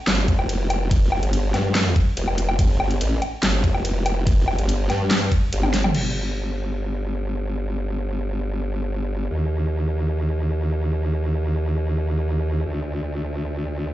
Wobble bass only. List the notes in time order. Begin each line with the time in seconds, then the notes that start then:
0.07 G1
0.39 F1
1.23 G1
1.54 G2
2.17 F1
2.59 G1
2.80 G1
3.01 A1
3.43 G1
3.75 F1
4.58 G1
4.90 G2
5.53 G1
5.95 G1
9.30 D#2
12.66 D2